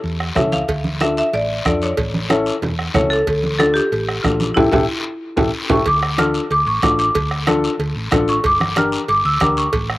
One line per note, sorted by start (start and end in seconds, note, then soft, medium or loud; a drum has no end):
0.03 0.30 E2 medium
0.03 high conga soft
0.03 long guiro medium
0.20 bombo rim medium
0.35 0.62 C#2 medium
0.35 0.58 C#4 medium
0.35 0.59 E4 medium
0.35 0.59 A4 medium
0.35 0.51 E5 medium
0.35 bombo low medium
0.35 bombo rim medium
0.35 high conga medium
0.35 low conga medium
0.35 short guiro medium
0.52 0.98 F5 loud
0.52 high conga medium
0.52 short guiro medium
0.68 1.21 D2 medium
0.68 bombo low medium
0.68 cowbell loud
0.68 high conga soft
0.68 long guiro medium
0.84 high conga medium
1.00 1.23 D4 medium
1.00 1.24 F4 medium
1.00 1.24 A4 medium
1.00 1.16 E5 medium
1.00 bombo rim medium
1.00 high conga medium
1.00 short guiro medium
1.17 1.25 E5 loud
1.17 short guiro medium
1.33 1.59 A1 medium
1.33 1.64 D5 medium
1.33 cowbell medium
1.33 high conga soft
1.33 long guiro medium
1.65 1.92 F2 medium
1.65 1.88 D4 medium
1.65 1.88 F4 medium
1.65 1.89 A4 medium
1.65 1.74 D5 medium
1.65 bombo low medium
1.65 bombo rim medium
1.65 high conga medium
1.65 short guiro medium
1.82 2.28 C#5 medium
1.82 short guiro medium
1.97 2.50 A1 medium
1.97 bombo low medium
1.97 cowbell loud
1.97 high conga soft
1.97 long guiro medium
2.14 high conga medium
2.29 2.53 C#4 medium
2.29 2.53 E4 medium
2.29 2.53 A4 medium
2.29 bombo rim medium
2.29 high conga medium
2.29 short guiro medium
2.46 short guiro medium
2.62 2.88 E2 medium
2.62 cowbell medium
2.62 high conga soft
2.62 low conga medium
2.62 long guiro medium
2.79 bombo rim medium
2.94 3.21 C#2 medium
2.94 3.17 C#4 medium
2.94 3.17 E4 medium
2.94 3.18 A4 medium
2.94 3.02 C#5 medium
2.94 bombo low medium
2.94 bombo rim medium
2.94 high conga medium
2.94 low conga medium
2.94 low timbale medium
2.94 short guiro medium
3.10 3.56 A4 loud
3.10 short guiro medium
3.27 3.79 D2 medium
3.27 bombo low medium
3.27 cowbell loud
3.27 high conga soft
3.27 long guiro medium
3.43 high conga medium
3.59 3.82 D4 medium
3.59 3.82 F4 medium
3.59 3.66 A4 medium
3.59 3.82 A4 medium
3.59 bombo rim medium
3.59 high conga medium
3.59 short guiro medium
3.74 4.20 G4 loud
3.74 short guiro medium
3.92 4.18 A1 medium
3.92 cowbell medium
3.92 high conga soft
3.92 long guiro medium
4.09 bombo rim medium
4.23 4.50 A#1 medium
4.23 4.47 D4 medium
4.23 4.53 F4 medium
4.23 4.47 F4 medium
4.23 4.47 A4 medium
4.23 bombo low medium
4.23 bombo rim medium
4.23 high conga medium
4.23 low timbale medium
4.23 short guiro medium
4.40 high conga medium
4.40 short guiro medium
4.54 4.69 A1 medium
4.54 5.49 E4 medium
4.54 4.67 E4 medium
4.54 4.67 G4 medium
4.54 4.67 A4 medium
4.54 bombo low medium
4.54 low conga loud
4.54 high timbale loud
4.54 long guiro medium
4.71 4.85 A1 medium
4.71 4.82 E4 medium
4.71 4.82 G4 medium
4.71 4.83 A4 medium
4.71 bombo low medium
4.71 low conga loud
4.71 high timbale loud
4.71 long guiro medium
5.36 5.50 A1 loud
5.36 5.47 E4 medium
5.36 5.47 G4 medium
5.36 5.47 A4 medium
5.36 bombo low loud
5.36 low conga medium
5.36 high timbale loud
5.36 long guiro medium
5.70 5.82 A1 medium
5.70 5.80 E4 medium
5.70 5.80 G4 medium
5.70 5.80 A4 medium
5.70 5.86 C#6 medium
5.70 bombo low medium
5.70 low conga loud
5.70 high timbale loud
5.70 long guiro medium
5.86 6.38 D2 medium
5.86 6.17 D6 loud
5.86 bombo low medium
5.86 cowbell loud
5.86 long guiro medium
6.03 bombo rim medium
6.18 6.40 D4 medium
6.18 6.41 F4 medium
6.18 6.41 A4 medium
6.18 6.52 F6 loud
6.18 bombo rim medium
6.18 cowbell medium
6.18 high conga medium
6.18 short guiro medium
6.34 short guiro medium
6.50 6.63 D2 medium
6.50 6.66 D6 loud
6.50 cowbell medium
6.50 long guiro medium
6.66 6.79 A1 loud
6.66 6.74 C#6 medium
6.82 7.09 A1 medium
6.82 7.05 D4 medium
6.82 7.05 F4 medium
6.82 7.06 A4 medium
6.82 6.98 D6 medium
6.82 bombo low medium
6.82 bombo rim medium
6.82 cowbell medium
6.82 high conga medium
6.82 low timbale medium
6.82 short guiro medium
6.99 7.60 D6 medium
6.99 short guiro medium
7.15 7.67 D2 medium
7.15 bombo low medium
7.15 cowbell loud
7.15 long guiro medium
7.31 bombo rim medium
7.47 7.70 D4 medium
7.47 7.70 F4 medium
7.47 7.70 A4 loud
7.47 bombo rim medium
7.47 cowbell medium
7.47 high conga medium
7.47 short guiro medium
7.64 short guiro medium
7.79 7.92 D2 medium
7.79 cowbell medium
7.79 long guiro medium
7.95 8.08 A1 loud
8.11 8.38 A1 medium
8.11 8.34 D4 medium
8.11 8.34 F4 medium
8.11 8.35 A4 medium
8.11 bombo low medium
8.11 bombo rim medium
8.11 cowbell medium
8.11 high conga medium
8.11 low conga medium
8.11 low timbale medium
8.11 short guiro medium
8.28 8.36 C#6 medium
8.28 short guiro medium
8.44 8.96 G1 medium
8.44 8.75 D6 loud
8.44 bombo low medium
8.44 cowbell loud
8.44 long guiro medium
8.60 bombo rim medium
8.60 high conga medium
8.76 8.99 D4 medium
8.76 8.99 G4 medium
8.76 8.99 A#4 medium
8.76 9.07 F6 loud
8.76 bombo rim medium
8.76 cowbell medium
8.76 high conga medium
8.76 short guiro medium
8.92 short guiro medium
9.08 9.21 G1 loud
9.08 9.24 D6 loud
9.08 cowbell medium
9.08 long guiro medium
9.25 9.38 D2 loud
9.25 9.40 E6 loud
9.40 9.67 D2 medium
9.40 9.63 D4 medium
9.40 9.64 G4 medium
9.40 9.64 A#4 medium
9.40 9.56 D6 medium
9.40 bombo low medium
9.40 bombo rim medium
9.40 cowbell medium
9.40 high conga medium
9.40 short guiro medium
9.57 9.98 C#6 medium
9.57 short guiro medium
9.73 9.98 A1 medium
9.73 bombo low medium
9.73 cowbell loud
9.73 long guiro medium
9.90 bombo rim medium